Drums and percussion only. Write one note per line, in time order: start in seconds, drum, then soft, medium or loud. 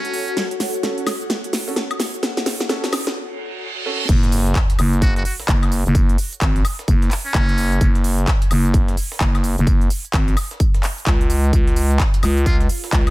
0.05 closed hi-hat medium
0.14 open hi-hat medium
0.14 shaker medium
0.28 closed hi-hat soft
0.28 shaker soft
0.37 snare medium
0.37 closed hi-hat medium
0.37 shaker soft
0.51 closed hi-hat medium
0.60 snare medium
0.60 open hi-hat loud
0.60 shaker medium
0.74 closed hi-hat soft
0.74 shaker soft
0.83 snare medium
0.83 closed hi-hat medium
0.83 shaker soft
0.98 closed hi-hat soft
1.07 snare medium
1.07 open hi-hat medium
1.07 high woodblock medium
1.07 shaker medium
1.21 closed hi-hat soft
1.21 shaker soft
1.30 snare medium
1.30 closed hi-hat medium
1.30 shaker soft
1.44 closed hi-hat medium
1.53 snare medium
1.53 open hi-hat loud
1.53 shaker medium
1.68 shaker soft
1.76 snare medium
1.76 closed hi-hat medium
1.76 shaker soft
1.91 closed hi-hat medium
1.91 high woodblock medium
2.00 snare medium
2.00 open hi-hat loud
2.00 shaker medium
2.14 closed hi-hat soft
2.14 shaker soft
2.23 snare medium
2.23 closed hi-hat medium
2.23 shaker soft
2.37 snare medium
2.37 closed hi-hat medium
2.46 snare medium
2.46 open hi-hat loud
2.46 shaker medium
2.60 snare medium
2.60 shaker soft
2.69 snare medium
2.69 closed hi-hat medium
2.69 shaker soft
2.84 snare medium
2.84 closed hi-hat soft
2.93 snare loud
2.93 open hi-hat loud
2.93 high woodblock medium
2.93 shaker medium
3.07 snare medium
3.07 shaker soft
4.09 kick loud
4.09 closed hi-hat medium
4.09 crash loud
4.09 tambourine medium
4.09 shaker soft
4.23 snare soft
4.23 closed hi-hat medium
4.32 open hi-hat loud
4.32 tambourine medium
4.32 shaker medium
4.47 closed hi-hat soft
4.47 shaker soft
4.55 kick loud
4.55 snare loud
4.55 clap loud
4.55 closed hi-hat medium
4.55 tambourine medium
4.55 shaker soft
4.70 closed hi-hat soft
4.70 closed hi-hat medium
4.79 open hi-hat medium
4.79 tambourine medium
4.79 high woodblock medium
4.79 shaker medium
4.93 closed hi-hat soft
4.93 shaker soft
5.02 kick loud
5.02 closed hi-hat medium
5.02 tambourine medium
5.02 shaker soft
5.16 snare soft
5.16 closed hi-hat medium
5.25 open hi-hat loud
5.25 tambourine medium
5.25 shaker medium
5.40 snare medium
5.40 shaker soft
5.48 kick loud
5.48 snare loud
5.48 clap loud
5.48 closed hi-hat medium
5.48 tambourine medium
5.48 shaker soft
5.63 snare medium
5.63 closed hi-hat medium
5.63 high woodblock medium
5.72 open hi-hat medium
5.72 tambourine medium
5.72 shaker medium
5.86 closed hi-hat soft
5.86 shaker soft
5.95 kick loud
5.95 closed hi-hat medium
5.95 tambourine medium
5.95 shaker soft
6.09 closed hi-hat medium
6.18 open hi-hat loud
6.18 tambourine medium
6.18 shaker medium
6.33 closed hi-hat soft
6.33 shaker soft
6.41 kick loud
6.41 snare loud
6.41 clap loud
6.41 closed hi-hat medium
6.41 tambourine medium
6.41 shaker soft
6.56 snare soft
6.56 closed hi-hat medium
6.65 open hi-hat medium
6.65 tambourine medium
6.65 high woodblock medium
6.65 shaker medium
6.79 snare medium
6.79 closed hi-hat soft
6.79 shaker soft
6.88 kick loud
6.88 closed hi-hat medium
6.88 tambourine medium
6.88 shaker soft
7.02 snare soft
7.02 closed hi-hat medium
7.11 clap medium
7.11 open hi-hat loud
7.11 tambourine medium
7.11 shaker medium
7.26 shaker soft
7.34 kick loud
7.34 snare loud
7.34 clap loud
7.34 closed hi-hat medium
7.34 tambourine medium
7.34 shaker soft
7.49 closed hi-hat medium
7.58 open hi-hat loud
7.58 tambourine medium
7.58 shaker medium
7.72 closed hi-hat soft
7.72 shaker soft
7.81 kick loud
7.81 closed hi-hat medium
7.81 tambourine medium
7.81 shaker soft
7.95 snare soft
7.95 closed hi-hat medium
8.04 open hi-hat loud
8.04 tambourine medium
8.04 shaker medium
8.19 closed hi-hat soft
8.19 shaker soft
8.27 kick loud
8.27 snare loud
8.27 clap loud
8.27 closed hi-hat medium
8.27 tambourine medium
8.27 shaker soft
8.42 closed hi-hat soft
8.42 closed hi-hat medium
8.51 open hi-hat loud
8.51 tambourine medium
8.51 high woodblock medium
8.51 shaker medium
8.65 closed hi-hat soft
8.65 shaker soft
8.74 kick loud
8.74 closed hi-hat medium
8.74 tambourine medium
8.74 shaker soft
8.88 snare soft
8.88 closed hi-hat medium
8.97 open hi-hat loud
8.97 tambourine medium
8.97 shaker medium
9.12 snare medium
9.12 shaker soft
9.21 kick loud
9.21 snare loud
9.21 clap loud
9.21 closed hi-hat medium
9.21 tambourine medium
9.21 shaker soft
9.35 snare medium
9.35 closed hi-hat medium
9.35 high woodblock medium
9.44 open hi-hat loud
9.44 tambourine medium
9.44 shaker medium
9.58 closed hi-hat soft
9.58 shaker soft
9.67 kick loud
9.67 closed hi-hat medium
9.67 tambourine medium
9.67 shaker soft
9.81 closed hi-hat soft
9.90 open hi-hat loud
9.90 tambourine medium
9.90 shaker medium
10.05 closed hi-hat soft
10.05 shaker soft
10.14 kick loud
10.14 snare loud
10.14 clap loud
10.14 closed hi-hat medium
10.14 tambourine medium
10.14 shaker soft
10.28 snare soft
10.28 closed hi-hat soft
10.37 open hi-hat loud
10.37 tambourine medium
10.37 high woodblock medium
10.37 shaker medium
10.51 snare soft
10.51 closed hi-hat soft
10.51 shaker soft
10.60 kick loud
10.60 closed hi-hat medium
10.60 tambourine medium
10.60 shaker soft
10.74 snare soft
10.74 closed hi-hat medium
10.83 clap medium
10.83 open hi-hat loud
10.83 tambourine medium
10.83 shaker medium
10.98 shaker soft
11.07 kick loud
11.07 snare loud
11.07 clap loud
11.07 closed hi-hat medium
11.07 tambourine medium
11.07 shaker soft
11.21 closed hi-hat medium
11.30 open hi-hat loud
11.30 tambourine medium
11.30 shaker medium
11.44 closed hi-hat soft
11.44 shaker soft
11.53 kick loud
11.53 closed hi-hat medium
11.53 tambourine medium
11.53 shaker soft
11.67 snare soft
11.67 closed hi-hat medium
11.76 open hi-hat loud
11.76 tambourine medium
11.76 shaker medium
11.91 closed hi-hat soft
11.91 shaker soft
12.00 kick loud
12.00 snare loud
12.00 clap loud
12.00 closed hi-hat medium
12.00 tambourine medium
12.00 shaker soft
12.14 closed hi-hat soft
12.23 open hi-hat medium
12.23 tambourine medium
12.23 high woodblock medium
12.23 shaker medium
12.37 closed hi-hat soft
12.37 shaker soft
12.46 kick loud
12.46 closed hi-hat medium
12.46 tambourine medium
12.46 shaker soft
12.60 snare soft
12.60 closed hi-hat medium
12.69 open hi-hat loud
12.69 tambourine medium
12.69 shaker medium
12.84 snare medium
12.84 shaker soft
12.93 kick loud
12.93 snare loud
12.93 clap loud
12.93 closed hi-hat medium
12.93 tambourine medium
12.93 shaker soft
13.07 snare medium
13.07 closed hi-hat medium
13.07 high woodblock medium